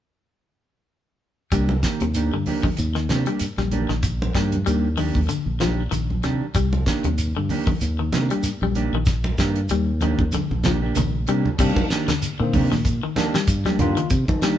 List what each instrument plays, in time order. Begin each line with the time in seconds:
1.52 fingered electric bass C2, clean electric guitar G3 A#3 D4 G4, muted clean electric guitar stroke, kick, closed hi-hat, shekere
1.69 high conga
1.83 clean electric guitar D#3 A#3 G4, muted clean electric guitar stroke, kick, snare, closed hi-hat, shekere
2.00 fingered electric bass D#2, clean electric guitar C3, closed hi-hat, high conga
2.14 clean electric guitar D#3 A#3 D4 G4, closed hi-hat, shekere
2.33 fingered electric bass G2, clean electric guitar D3
2.46 clean electric guitar D#3 A#3 D4 G4, open hi-hat, high conga, shekere
2.63 clean electric guitar D#3, muted fingered electric bass stroke, kick, high conga
2.77 fingered electric bass D#2, closed hi-hat, shekere
2.95 clean electric guitar D#3, snare
3.09 fingered electric bass C3, clean electric guitar D#3 A#3 D4 G4, snare, closed hi-hat, high conga, shekere
3.26 clean electric guitar G3 A#3 D4 G4, closed hi-hat
3.39 muted fingered electric bass stroke, closed hi-hat, shekere
3.57 fingered electric bass A#1, clean electric guitar G3, snare, high conga
3.71 clean electric guitar D#3 A#3 D4 G4, closed hi-hat, high conga, shekere
3.89 fingered electric bass A#1, clean electric guitar D#3, snare
4.03 kick, closed hi-hat, shekere
4.22 high conga
4.34 fingered electric bass G2, clean electric guitar D#3 G3 A#3 D4 G4, kick, snare, closed hi-hat, shekere
4.52 closed hi-hat, high conga
4.66 fingered electric bass D#2, clean electric guitar D#3 G3 A#3 D4 G4, closed hi-hat, shekere
4.97 clean electric guitar D#3 A#3 D4 G4, open hi-hat, high conga, shekere
5.15 fingered electric bass D#2, kick, high conga
5.29 clean electric guitar D3, closed hi-hat, shekere
5.46 fingered electric bass A#1
5.60 clean electric guitar D#3 F3 D4 G4, muted clean electric guitar stroke, snare, closed hi-hat, high conga, shekere
5.91 fingered electric bass A#1, clean electric guitar D#3, closed hi-hat, shekere
6.10 high conga
6.23 fingered electric bass C3, clean electric guitar D#3 D4 G4, muted clean electric guitar stroke, snare, closed hi-hat, high conga, shekere
6.54 fingered electric bass C2, clean electric guitar G3, kick, closed hi-hat, shekere
6.73 high conga
6.86 clean electric guitar D#3 A#3 D4 G4, kick, snare, closed hi-hat, shekere
7.04 fingered electric bass D#2, clean electric guitar C3, closed hi-hat, high conga
7.18 closed hi-hat, shekere
7.37 fingered electric bass G2, clean electric guitar D3
7.49 clean electric guitar D#3 A#3 D4 G4, open hi-hat, high conga, shekere
7.67 clean electric guitar D#3, muted fingered electric bass stroke, kick, high conga
7.81 fingered electric bass D#2, closed hi-hat, shekere
7.99 clean electric guitar D#3
8.12 fingered electric bass C3, clean electric guitar D#3 A#3 D4 G4, snare, closed hi-hat, high conga, shekere
8.30 clean electric guitar G3 A#3 D4 G4, closed hi-hat
8.43 muted fingered electric bass stroke, closed hi-hat, shekere
8.62 fingered electric bass A#1, clean electric guitar G3, high conga
8.75 clean electric guitar D#3 A#3 D4 G4, closed hi-hat, shekere
8.93 fingered electric bass A#1, clean electric guitar D#3
9.06 kick, snare, closed hi-hat, shekere
9.24 high conga
9.37 fingered electric bass G2, clean electric guitar D#3 A#3 D4 G4, muted clean electric guitar stroke, kick, snare, closed hi-hat, shekere
9.56 closed hi-hat
9.69 fingered electric bass D#2, clean electric guitar G3, closed hi-hat, shekere
10.01 clean electric guitar D#3 A#3 D4 G4, closed hi-hat, high conga, shekere
10.19 fingered electric bass D#2, kick, high conga
10.32 clean electric guitar D3, closed hi-hat, high conga, shekere
10.51 fingered electric bass A#1, high conga
10.64 clean electric guitar D#3 F3 A#3 D4 G4, snare, closed hi-hat, low conga, shekere
10.82 clean electric guitar A#3 D4 G4
10.95 fingered electric bass A#1, clean electric guitar D#3, closed hi-hat, low conga, shekere
11.27 fingered electric bass C3, clean electric guitar D#3 G3 A#3 D4 G4, closed hi-hat, shekere
11.46 low conga
11.59 fingered electric bass C3, tine electric piano D#3 A#3 D4, clean electric guitar G3 A#3 D4 G4, muted clean electric guitar stroke, kick, crash, shekere
11.76 fingered electric bass D#3, kick, high conga
11.90 clean electric guitar D#3 A#3 D4 G4, snare, closed hi-hat, shekere
12.08 clean electric guitar D3, snare, closed hi-hat, low conga
12.22 closed hi-hat, shekere
12.40 fingered electric bass A#2, clean electric guitar D3, tine electric piano D#3 A#3 C4
12.53 fingered electric bass C3, clean electric guitar D#3 A#3 D4 G4, kick, open hi-hat, high conga, low conga, shekere
12.71 fingered electric bass A#2, clean electric guitar D#3, snare, high conga
12.85 kick, closed hi-hat, shekere
13.03 clean electric guitar D#3
13.16 clean electric guitar D#3 A#3 D4 G4, tine electric piano D#3 A#3 D4, snare, closed hi-hat, high conga, shekere
13.34 clean electric guitar G3, snare
13.47 fingered electric bass G2, kick, closed hi-hat, shekere
13.65 clean electric guitar G3 A#3 D4 G4, snare, high conga
13.79 fingered electric bass G2, tine electric piano D#3 A#3 F4, clean electric guitar D#3 D4 G4, muted clean electric guitar stroke, closed hi-hat, high conga, low conga, shekere
13.97 clean electric guitar D#3, closed hi-hat
14.10 fingered electric bass C3, kick, closed hi-hat, shekere
14.28 fingered electric bass D#3, kick, high conga
14.42 clean electric guitar D#3 G3 A#3 D4 G4, snare, closed hi-hat, shekere